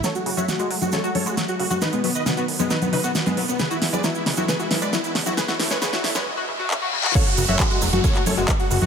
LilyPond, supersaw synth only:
\new Staff \with { instrumentName = "Supersaw synth" } { \time 4/4 \key fis \minor \tempo 4 = 135 <a' cis''>16 fis'16 fis'16 <cis'' e''>16 fis'16 fis'16 r16 fis'16 <a' cis''>16 fis'16 <a' cis''>16 fis'16 r16 fis'16 fis'16 fis'16 | <dis' b'>16 b16 b16 <b' dis''>16 b16 b16 r16 b16 <dis' b'>16 b16 <dis' b'>16 b16 r16 b16 b16 b16 | <gis' b'>16 e'16 e'16 <b' d''>16 e'16 e'16 r16 e'16 <gis' b'>16 e'16 e'16 <b' d''>16 e'16 e'16 r16 e'16 | <gis' b'>16 e'16 e'16 <b' cis''>16 <gis' b'>16 e'16 e'16 <b' cis''>16 r2 |
<a' cis''>16 fis'16 fis'16 <cis'' e''>16 fis'16 fis'16 r16 fis'16 <a' cis''>16 fis'16 <a' cis''>16 fis'16 r16 fis'16 fis'16 fis'16 | }